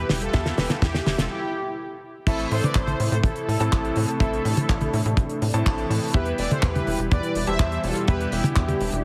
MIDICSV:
0, 0, Header, 1, 6, 480
1, 0, Start_track
1, 0, Key_signature, 0, "minor"
1, 0, Tempo, 483871
1, 334, Time_signature, 4, 2, 24, 8
1, 8968, End_track
2, 0, Start_track
2, 0, Title_t, "Analog polysynth"
2, 0, Program_c, 0, 90
2, 0, Note_on_c, 0, 71, 98
2, 96, Note_on_c, 0, 67, 93
2, 102, Note_off_c, 0, 71, 0
2, 104, Note_on_c, 0, 64, 67
2, 211, Note_off_c, 0, 64, 0
2, 216, Note_on_c, 0, 69, 93
2, 219, Note_off_c, 0, 67, 0
2, 223, Note_on_c, 0, 65, 73
2, 554, Note_off_c, 0, 65, 0
2, 576, Note_on_c, 0, 71, 88
2, 582, Note_on_c, 0, 67, 72
2, 586, Note_off_c, 0, 69, 0
2, 687, Note_off_c, 0, 71, 0
2, 690, Note_off_c, 0, 67, 0
2, 695, Note_on_c, 0, 69, 87
2, 703, Note_on_c, 0, 65, 70
2, 749, Note_off_c, 0, 69, 0
2, 755, Note_off_c, 0, 65, 0
2, 816, Note_on_c, 0, 67, 95
2, 823, Note_on_c, 0, 64, 70
2, 1042, Note_off_c, 0, 64, 0
2, 1045, Note_off_c, 0, 67, 0
2, 1057, Note_on_c, 0, 67, 89
2, 1064, Note_on_c, 0, 64, 69
2, 1171, Note_off_c, 0, 64, 0
2, 1178, Note_on_c, 0, 69, 87
2, 1179, Note_off_c, 0, 67, 0
2, 1184, Note_on_c, 0, 65, 68
2, 1231, Note_off_c, 0, 69, 0
2, 1236, Note_off_c, 0, 65, 0
2, 1296, Note_on_c, 0, 67, 89
2, 1302, Note_on_c, 0, 64, 65
2, 1742, Note_off_c, 0, 67, 0
2, 1745, Note_off_c, 0, 64, 0
2, 2254, Note_on_c, 0, 69, 99
2, 2262, Note_on_c, 0, 64, 75
2, 2482, Note_off_c, 0, 64, 0
2, 2491, Note_off_c, 0, 69, 0
2, 2495, Note_on_c, 0, 72, 100
2, 2503, Note_on_c, 0, 69, 78
2, 2606, Note_off_c, 0, 72, 0
2, 2610, Note_off_c, 0, 69, 0
2, 2615, Note_on_c, 0, 74, 108
2, 2624, Note_on_c, 0, 71, 82
2, 2726, Note_off_c, 0, 74, 0
2, 2731, Note_off_c, 0, 71, 0
2, 2735, Note_on_c, 0, 72, 108
2, 2743, Note_on_c, 0, 69, 85
2, 3074, Note_off_c, 0, 69, 0
2, 3083, Note_off_c, 0, 72, 0
2, 3095, Note_on_c, 0, 72, 96
2, 3103, Note_on_c, 0, 69, 80
2, 3149, Note_off_c, 0, 72, 0
2, 3155, Note_off_c, 0, 69, 0
2, 3217, Note_on_c, 0, 69, 107
2, 3225, Note_on_c, 0, 64, 84
2, 4140, Note_off_c, 0, 64, 0
2, 4166, Note_off_c, 0, 69, 0
2, 4177, Note_on_c, 0, 69, 96
2, 4184, Note_on_c, 0, 64, 72
2, 5576, Note_off_c, 0, 69, 0
2, 5580, Note_off_c, 0, 64, 0
2, 6095, Note_on_c, 0, 71, 99
2, 6102, Note_on_c, 0, 67, 74
2, 6322, Note_off_c, 0, 67, 0
2, 6329, Note_off_c, 0, 71, 0
2, 6333, Note_on_c, 0, 74, 95
2, 6341, Note_on_c, 0, 71, 75
2, 6449, Note_off_c, 0, 71, 0
2, 6455, Note_on_c, 0, 72, 98
2, 6457, Note_off_c, 0, 74, 0
2, 6463, Note_on_c, 0, 69, 76
2, 6570, Note_off_c, 0, 69, 0
2, 6574, Note_on_c, 0, 71, 105
2, 6578, Note_off_c, 0, 72, 0
2, 6582, Note_on_c, 0, 67, 82
2, 7025, Note_off_c, 0, 67, 0
2, 7050, Note_off_c, 0, 71, 0
2, 7054, Note_on_c, 0, 74, 111
2, 7062, Note_on_c, 0, 71, 86
2, 7393, Note_off_c, 0, 71, 0
2, 7414, Note_on_c, 0, 76, 119
2, 7421, Note_on_c, 0, 72, 91
2, 7425, Note_off_c, 0, 74, 0
2, 7749, Note_off_c, 0, 76, 0
2, 7753, Note_off_c, 0, 72, 0
2, 7773, Note_on_c, 0, 69, 94
2, 7781, Note_on_c, 0, 65, 75
2, 8001, Note_off_c, 0, 65, 0
2, 8013, Note_on_c, 0, 71, 106
2, 8021, Note_off_c, 0, 69, 0
2, 8022, Note_on_c, 0, 67, 80
2, 8241, Note_off_c, 0, 67, 0
2, 8254, Note_on_c, 0, 67, 99
2, 8261, Note_off_c, 0, 71, 0
2, 8262, Note_on_c, 0, 64, 79
2, 8939, Note_off_c, 0, 64, 0
2, 8963, Note_off_c, 0, 67, 0
2, 8968, End_track
3, 0, Start_track
3, 0, Title_t, "Electric grand piano"
3, 0, Program_c, 1, 2
3, 0, Note_on_c, 1, 52, 78
3, 0, Note_on_c, 1, 59, 71
3, 0, Note_on_c, 1, 64, 72
3, 0, Note_on_c, 1, 67, 72
3, 0, Note_on_c, 1, 76, 89
3, 305, Note_off_c, 1, 52, 0
3, 305, Note_off_c, 1, 59, 0
3, 305, Note_off_c, 1, 64, 0
3, 305, Note_off_c, 1, 67, 0
3, 305, Note_off_c, 1, 76, 0
3, 333, Note_on_c, 1, 52, 92
3, 333, Note_on_c, 1, 59, 84
3, 333, Note_on_c, 1, 64, 83
3, 333, Note_on_c, 1, 67, 84
3, 333, Note_on_c, 1, 76, 100
3, 1293, Note_off_c, 1, 52, 0
3, 1293, Note_off_c, 1, 59, 0
3, 1293, Note_off_c, 1, 67, 0
3, 1293, Note_off_c, 1, 76, 0
3, 1294, Note_off_c, 1, 64, 0
3, 2253, Note_on_c, 1, 45, 86
3, 2253, Note_on_c, 1, 60, 87
3, 2253, Note_on_c, 1, 64, 84
3, 2253, Note_on_c, 1, 69, 82
3, 2253, Note_on_c, 1, 76, 101
3, 3425, Note_off_c, 1, 45, 0
3, 3425, Note_off_c, 1, 60, 0
3, 3425, Note_off_c, 1, 64, 0
3, 3425, Note_off_c, 1, 69, 0
3, 3425, Note_off_c, 1, 76, 0
3, 3574, Note_on_c, 1, 45, 94
3, 3574, Note_on_c, 1, 60, 86
3, 3574, Note_on_c, 1, 64, 84
3, 3574, Note_on_c, 1, 69, 84
3, 3574, Note_on_c, 1, 81, 106
3, 4145, Note_off_c, 1, 45, 0
3, 4145, Note_off_c, 1, 60, 0
3, 4145, Note_off_c, 1, 64, 0
3, 4145, Note_off_c, 1, 69, 0
3, 4145, Note_off_c, 1, 81, 0
3, 4173, Note_on_c, 1, 45, 88
3, 4173, Note_on_c, 1, 64, 80
3, 4173, Note_on_c, 1, 69, 87
3, 4173, Note_on_c, 1, 76, 97
3, 4174, Note_on_c, 1, 60, 79
3, 5345, Note_off_c, 1, 45, 0
3, 5345, Note_off_c, 1, 60, 0
3, 5345, Note_off_c, 1, 64, 0
3, 5345, Note_off_c, 1, 69, 0
3, 5345, Note_off_c, 1, 76, 0
3, 5494, Note_on_c, 1, 45, 92
3, 5494, Note_on_c, 1, 60, 86
3, 5494, Note_on_c, 1, 64, 87
3, 5494, Note_on_c, 1, 69, 85
3, 5494, Note_on_c, 1, 81, 109
3, 6065, Note_off_c, 1, 45, 0
3, 6065, Note_off_c, 1, 60, 0
3, 6065, Note_off_c, 1, 64, 0
3, 6065, Note_off_c, 1, 69, 0
3, 6065, Note_off_c, 1, 81, 0
3, 6094, Note_on_c, 1, 52, 91
3, 6094, Note_on_c, 1, 59, 82
3, 6094, Note_on_c, 1, 64, 80
3, 6094, Note_on_c, 1, 67, 88
3, 6094, Note_on_c, 1, 76, 101
3, 7265, Note_off_c, 1, 52, 0
3, 7265, Note_off_c, 1, 59, 0
3, 7265, Note_off_c, 1, 64, 0
3, 7265, Note_off_c, 1, 67, 0
3, 7265, Note_off_c, 1, 76, 0
3, 7413, Note_on_c, 1, 52, 94
3, 7413, Note_on_c, 1, 64, 87
3, 7413, Note_on_c, 1, 67, 83
3, 7414, Note_on_c, 1, 55, 84
3, 7414, Note_on_c, 1, 81, 100
3, 7985, Note_off_c, 1, 52, 0
3, 7985, Note_off_c, 1, 55, 0
3, 7985, Note_off_c, 1, 64, 0
3, 7985, Note_off_c, 1, 67, 0
3, 7985, Note_off_c, 1, 81, 0
3, 8014, Note_on_c, 1, 52, 88
3, 8014, Note_on_c, 1, 59, 86
3, 8014, Note_on_c, 1, 64, 86
3, 8014, Note_on_c, 1, 67, 82
3, 8014, Note_on_c, 1, 76, 99
3, 8968, Note_off_c, 1, 52, 0
3, 8968, Note_off_c, 1, 59, 0
3, 8968, Note_off_c, 1, 64, 0
3, 8968, Note_off_c, 1, 67, 0
3, 8968, Note_off_c, 1, 76, 0
3, 8968, End_track
4, 0, Start_track
4, 0, Title_t, "Analog synth pad"
4, 0, Program_c, 2, 89
4, 0, Note_on_c, 2, 47, 80
4, 0, Note_on_c, 2, 55, 79
4, 0, Note_on_c, 2, 67, 88
4, 0, Note_on_c, 2, 76, 72
4, 1255, Note_off_c, 2, 76, 0
4, 1265, Note_off_c, 2, 47, 0
4, 1265, Note_off_c, 2, 55, 0
4, 1265, Note_off_c, 2, 67, 0
4, 2254, Note_on_c, 2, 52, 77
4, 2255, Note_on_c, 2, 48, 85
4, 2255, Note_on_c, 2, 57, 75
4, 2255, Note_on_c, 2, 64, 78
4, 2255, Note_on_c, 2, 69, 91
4, 4155, Note_off_c, 2, 64, 0
4, 4175, Note_on_c, 2, 62, 76
4, 6056, Note_off_c, 2, 48, 0
4, 6056, Note_off_c, 2, 57, 0
4, 6056, Note_off_c, 2, 69, 0
4, 6075, Note_off_c, 2, 62, 0
4, 6094, Note_on_c, 2, 47, 84
4, 6094, Note_on_c, 2, 55, 74
4, 6094, Note_on_c, 2, 67, 92
4, 6095, Note_on_c, 2, 64, 73
4, 7995, Note_off_c, 2, 64, 0
4, 8017, Note_on_c, 2, 62, 73
4, 8968, Note_off_c, 2, 47, 0
4, 8968, Note_off_c, 2, 52, 0
4, 8968, Note_off_c, 2, 55, 0
4, 8968, Note_off_c, 2, 62, 0
4, 8968, Note_off_c, 2, 67, 0
4, 8968, End_track
5, 0, Start_track
5, 0, Title_t, "Analog synth bass"
5, 0, Program_c, 3, 38
5, 95, Note_on_c, 3, 28, 97
5, 283, Note_off_c, 3, 28, 0
5, 337, Note_on_c, 3, 40, 97
5, 524, Note_off_c, 3, 40, 0
5, 574, Note_on_c, 3, 28, 99
5, 669, Note_off_c, 3, 28, 0
5, 814, Note_on_c, 3, 40, 84
5, 1003, Note_off_c, 3, 40, 0
5, 1054, Note_on_c, 3, 28, 85
5, 1148, Note_off_c, 3, 28, 0
5, 1174, Note_on_c, 3, 28, 89
5, 1268, Note_off_c, 3, 28, 0
5, 2249, Note_on_c, 3, 33, 95
5, 2440, Note_off_c, 3, 33, 0
5, 2494, Note_on_c, 3, 45, 99
5, 2588, Note_off_c, 3, 45, 0
5, 2732, Note_on_c, 3, 33, 90
5, 2921, Note_off_c, 3, 33, 0
5, 2974, Note_on_c, 3, 45, 86
5, 3068, Note_off_c, 3, 45, 0
5, 3094, Note_on_c, 3, 45, 92
5, 3188, Note_off_c, 3, 45, 0
5, 3209, Note_on_c, 3, 33, 107
5, 3306, Note_off_c, 3, 33, 0
5, 3454, Note_on_c, 3, 45, 84
5, 3548, Note_off_c, 3, 45, 0
5, 3574, Note_on_c, 3, 45, 98
5, 3668, Note_off_c, 3, 45, 0
5, 3696, Note_on_c, 3, 33, 86
5, 3883, Note_off_c, 3, 33, 0
5, 3934, Note_on_c, 3, 45, 91
5, 4028, Note_off_c, 3, 45, 0
5, 4169, Note_on_c, 3, 33, 97
5, 4360, Note_off_c, 3, 33, 0
5, 4414, Note_on_c, 3, 45, 100
5, 4508, Note_off_c, 3, 45, 0
5, 4654, Note_on_c, 3, 33, 86
5, 4843, Note_off_c, 3, 33, 0
5, 4894, Note_on_c, 3, 45, 89
5, 4988, Note_off_c, 3, 45, 0
5, 5015, Note_on_c, 3, 45, 90
5, 5109, Note_off_c, 3, 45, 0
5, 5129, Note_on_c, 3, 33, 106
5, 5226, Note_off_c, 3, 33, 0
5, 5375, Note_on_c, 3, 45, 90
5, 5469, Note_off_c, 3, 45, 0
5, 5494, Note_on_c, 3, 45, 96
5, 5588, Note_off_c, 3, 45, 0
5, 5617, Note_on_c, 3, 33, 82
5, 5804, Note_off_c, 3, 33, 0
5, 5854, Note_on_c, 3, 45, 89
5, 5948, Note_off_c, 3, 45, 0
5, 6094, Note_on_c, 3, 40, 101
5, 6282, Note_off_c, 3, 40, 0
5, 6334, Note_on_c, 3, 28, 99
5, 6428, Note_off_c, 3, 28, 0
5, 6575, Note_on_c, 3, 40, 88
5, 6763, Note_off_c, 3, 40, 0
5, 6814, Note_on_c, 3, 28, 90
5, 6908, Note_off_c, 3, 28, 0
5, 6934, Note_on_c, 3, 28, 91
5, 7028, Note_off_c, 3, 28, 0
5, 7059, Note_on_c, 3, 40, 105
5, 7151, Note_off_c, 3, 40, 0
5, 7294, Note_on_c, 3, 28, 86
5, 7388, Note_off_c, 3, 28, 0
5, 7414, Note_on_c, 3, 28, 98
5, 7508, Note_off_c, 3, 28, 0
5, 7533, Note_on_c, 3, 40, 83
5, 7722, Note_off_c, 3, 40, 0
5, 7774, Note_on_c, 3, 28, 91
5, 7868, Note_off_c, 3, 28, 0
5, 8017, Note_on_c, 3, 40, 100
5, 8204, Note_off_c, 3, 40, 0
5, 8254, Note_on_c, 3, 28, 102
5, 8348, Note_off_c, 3, 28, 0
5, 8494, Note_on_c, 3, 40, 86
5, 8682, Note_off_c, 3, 40, 0
5, 8734, Note_on_c, 3, 28, 88
5, 8828, Note_off_c, 3, 28, 0
5, 8854, Note_on_c, 3, 28, 89
5, 8948, Note_off_c, 3, 28, 0
5, 8968, End_track
6, 0, Start_track
6, 0, Title_t, "Drums"
6, 93, Note_on_c, 9, 38, 96
6, 99, Note_on_c, 9, 46, 112
6, 192, Note_off_c, 9, 38, 0
6, 199, Note_off_c, 9, 46, 0
6, 214, Note_on_c, 9, 42, 68
6, 313, Note_off_c, 9, 42, 0
6, 331, Note_on_c, 9, 42, 66
6, 332, Note_on_c, 9, 38, 97
6, 337, Note_on_c, 9, 36, 126
6, 430, Note_off_c, 9, 42, 0
6, 432, Note_off_c, 9, 38, 0
6, 436, Note_off_c, 9, 36, 0
6, 454, Note_on_c, 9, 38, 86
6, 454, Note_on_c, 9, 42, 48
6, 553, Note_off_c, 9, 38, 0
6, 554, Note_off_c, 9, 42, 0
6, 571, Note_on_c, 9, 46, 105
6, 575, Note_on_c, 9, 38, 101
6, 670, Note_off_c, 9, 46, 0
6, 674, Note_off_c, 9, 38, 0
6, 692, Note_on_c, 9, 42, 64
6, 694, Note_on_c, 9, 38, 89
6, 791, Note_off_c, 9, 42, 0
6, 793, Note_off_c, 9, 38, 0
6, 813, Note_on_c, 9, 42, 70
6, 814, Note_on_c, 9, 36, 117
6, 817, Note_on_c, 9, 38, 99
6, 912, Note_off_c, 9, 42, 0
6, 913, Note_off_c, 9, 36, 0
6, 916, Note_off_c, 9, 38, 0
6, 937, Note_on_c, 9, 38, 82
6, 946, Note_on_c, 9, 42, 49
6, 1036, Note_off_c, 9, 38, 0
6, 1045, Note_off_c, 9, 42, 0
6, 1054, Note_on_c, 9, 46, 98
6, 1056, Note_on_c, 9, 38, 92
6, 1153, Note_off_c, 9, 46, 0
6, 1156, Note_off_c, 9, 38, 0
6, 1175, Note_on_c, 9, 38, 94
6, 1180, Note_on_c, 9, 42, 62
6, 1274, Note_off_c, 9, 38, 0
6, 1279, Note_off_c, 9, 42, 0
6, 2249, Note_on_c, 9, 36, 108
6, 2255, Note_on_c, 9, 49, 107
6, 2258, Note_on_c, 9, 42, 74
6, 2348, Note_off_c, 9, 36, 0
6, 2354, Note_off_c, 9, 49, 0
6, 2357, Note_off_c, 9, 42, 0
6, 2371, Note_on_c, 9, 42, 45
6, 2471, Note_off_c, 9, 42, 0
6, 2494, Note_on_c, 9, 46, 124
6, 2593, Note_off_c, 9, 46, 0
6, 2618, Note_on_c, 9, 48, 81
6, 2622, Note_on_c, 9, 42, 76
6, 2718, Note_off_c, 9, 48, 0
6, 2721, Note_off_c, 9, 42, 0
6, 2723, Note_on_c, 9, 39, 118
6, 2731, Note_on_c, 9, 36, 108
6, 2737, Note_on_c, 9, 42, 68
6, 2823, Note_off_c, 9, 39, 0
6, 2831, Note_off_c, 9, 36, 0
6, 2836, Note_off_c, 9, 42, 0
6, 2851, Note_on_c, 9, 48, 78
6, 2855, Note_on_c, 9, 42, 51
6, 2950, Note_off_c, 9, 48, 0
6, 2954, Note_off_c, 9, 42, 0
6, 2974, Note_on_c, 9, 46, 102
6, 3074, Note_off_c, 9, 46, 0
6, 3098, Note_on_c, 9, 42, 67
6, 3197, Note_off_c, 9, 42, 0
6, 3209, Note_on_c, 9, 36, 118
6, 3219, Note_on_c, 9, 42, 75
6, 3308, Note_off_c, 9, 36, 0
6, 3319, Note_off_c, 9, 42, 0
6, 3329, Note_on_c, 9, 42, 47
6, 3428, Note_off_c, 9, 42, 0
6, 3463, Note_on_c, 9, 46, 121
6, 3562, Note_off_c, 9, 46, 0
6, 3573, Note_on_c, 9, 42, 75
6, 3672, Note_off_c, 9, 42, 0
6, 3694, Note_on_c, 9, 42, 71
6, 3696, Note_on_c, 9, 36, 110
6, 3696, Note_on_c, 9, 39, 116
6, 3793, Note_off_c, 9, 42, 0
6, 3795, Note_off_c, 9, 36, 0
6, 3795, Note_off_c, 9, 39, 0
6, 3816, Note_on_c, 9, 42, 44
6, 3915, Note_off_c, 9, 42, 0
6, 3925, Note_on_c, 9, 46, 108
6, 4024, Note_off_c, 9, 46, 0
6, 4052, Note_on_c, 9, 42, 65
6, 4152, Note_off_c, 9, 42, 0
6, 4169, Note_on_c, 9, 36, 111
6, 4180, Note_on_c, 9, 42, 79
6, 4268, Note_off_c, 9, 36, 0
6, 4279, Note_off_c, 9, 42, 0
6, 4300, Note_on_c, 9, 42, 45
6, 4399, Note_off_c, 9, 42, 0
6, 4416, Note_on_c, 9, 46, 116
6, 4515, Note_off_c, 9, 46, 0
6, 4534, Note_on_c, 9, 42, 68
6, 4536, Note_on_c, 9, 48, 77
6, 4633, Note_off_c, 9, 42, 0
6, 4635, Note_off_c, 9, 48, 0
6, 4652, Note_on_c, 9, 42, 76
6, 4654, Note_on_c, 9, 36, 118
6, 4659, Note_on_c, 9, 39, 113
6, 4751, Note_off_c, 9, 42, 0
6, 4753, Note_off_c, 9, 36, 0
6, 4759, Note_off_c, 9, 39, 0
6, 4769, Note_on_c, 9, 42, 48
6, 4775, Note_on_c, 9, 48, 75
6, 4868, Note_off_c, 9, 42, 0
6, 4875, Note_off_c, 9, 48, 0
6, 4895, Note_on_c, 9, 46, 109
6, 4994, Note_off_c, 9, 46, 0
6, 5016, Note_on_c, 9, 42, 68
6, 5115, Note_off_c, 9, 42, 0
6, 5129, Note_on_c, 9, 36, 118
6, 5130, Note_on_c, 9, 42, 69
6, 5228, Note_off_c, 9, 36, 0
6, 5229, Note_off_c, 9, 42, 0
6, 5252, Note_on_c, 9, 42, 52
6, 5352, Note_off_c, 9, 42, 0
6, 5376, Note_on_c, 9, 46, 116
6, 5475, Note_off_c, 9, 46, 0
6, 5498, Note_on_c, 9, 42, 67
6, 5597, Note_off_c, 9, 42, 0
6, 5614, Note_on_c, 9, 42, 70
6, 5617, Note_on_c, 9, 36, 127
6, 5619, Note_on_c, 9, 39, 125
6, 5713, Note_off_c, 9, 42, 0
6, 5716, Note_off_c, 9, 36, 0
6, 5718, Note_off_c, 9, 39, 0
6, 5734, Note_on_c, 9, 42, 45
6, 5833, Note_off_c, 9, 42, 0
6, 5860, Note_on_c, 9, 46, 106
6, 5960, Note_off_c, 9, 46, 0
6, 5980, Note_on_c, 9, 46, 76
6, 6079, Note_off_c, 9, 46, 0
6, 6085, Note_on_c, 9, 42, 75
6, 6093, Note_on_c, 9, 36, 127
6, 6184, Note_off_c, 9, 42, 0
6, 6193, Note_off_c, 9, 36, 0
6, 6205, Note_on_c, 9, 42, 52
6, 6304, Note_off_c, 9, 42, 0
6, 6330, Note_on_c, 9, 46, 118
6, 6429, Note_off_c, 9, 46, 0
6, 6460, Note_on_c, 9, 42, 68
6, 6462, Note_on_c, 9, 48, 76
6, 6559, Note_off_c, 9, 42, 0
6, 6561, Note_off_c, 9, 48, 0
6, 6572, Note_on_c, 9, 39, 127
6, 6572, Note_on_c, 9, 42, 76
6, 6575, Note_on_c, 9, 36, 115
6, 6671, Note_off_c, 9, 39, 0
6, 6671, Note_off_c, 9, 42, 0
6, 6674, Note_off_c, 9, 36, 0
6, 6700, Note_on_c, 9, 42, 54
6, 6703, Note_on_c, 9, 48, 75
6, 6800, Note_off_c, 9, 42, 0
6, 6802, Note_off_c, 9, 48, 0
6, 6816, Note_on_c, 9, 46, 107
6, 6915, Note_off_c, 9, 46, 0
6, 6929, Note_on_c, 9, 42, 72
6, 7028, Note_off_c, 9, 42, 0
6, 7057, Note_on_c, 9, 42, 71
6, 7059, Note_on_c, 9, 36, 127
6, 7156, Note_off_c, 9, 42, 0
6, 7158, Note_off_c, 9, 36, 0
6, 7174, Note_on_c, 9, 42, 53
6, 7273, Note_off_c, 9, 42, 0
6, 7294, Note_on_c, 9, 46, 119
6, 7393, Note_off_c, 9, 46, 0
6, 7413, Note_on_c, 9, 42, 69
6, 7513, Note_off_c, 9, 42, 0
6, 7533, Note_on_c, 9, 36, 112
6, 7533, Note_on_c, 9, 42, 71
6, 7535, Note_on_c, 9, 39, 118
6, 7632, Note_off_c, 9, 36, 0
6, 7632, Note_off_c, 9, 42, 0
6, 7634, Note_off_c, 9, 39, 0
6, 7657, Note_on_c, 9, 42, 46
6, 7756, Note_off_c, 9, 42, 0
6, 7773, Note_on_c, 9, 46, 106
6, 7872, Note_off_c, 9, 46, 0
6, 7892, Note_on_c, 9, 42, 71
6, 7992, Note_off_c, 9, 42, 0
6, 8011, Note_on_c, 9, 42, 74
6, 8017, Note_on_c, 9, 36, 117
6, 8110, Note_off_c, 9, 42, 0
6, 8116, Note_off_c, 9, 36, 0
6, 8140, Note_on_c, 9, 42, 52
6, 8239, Note_off_c, 9, 42, 0
6, 8254, Note_on_c, 9, 46, 110
6, 8353, Note_off_c, 9, 46, 0
6, 8372, Note_on_c, 9, 48, 84
6, 8381, Note_on_c, 9, 42, 62
6, 8471, Note_off_c, 9, 48, 0
6, 8480, Note_off_c, 9, 42, 0
6, 8492, Note_on_c, 9, 39, 127
6, 8494, Note_on_c, 9, 36, 125
6, 8500, Note_on_c, 9, 42, 71
6, 8591, Note_off_c, 9, 39, 0
6, 8593, Note_off_c, 9, 36, 0
6, 8599, Note_off_c, 9, 42, 0
6, 8615, Note_on_c, 9, 42, 49
6, 8616, Note_on_c, 9, 48, 76
6, 8714, Note_off_c, 9, 42, 0
6, 8715, Note_off_c, 9, 48, 0
6, 8735, Note_on_c, 9, 46, 104
6, 8834, Note_off_c, 9, 46, 0
6, 8852, Note_on_c, 9, 42, 67
6, 8951, Note_off_c, 9, 42, 0
6, 8968, End_track
0, 0, End_of_file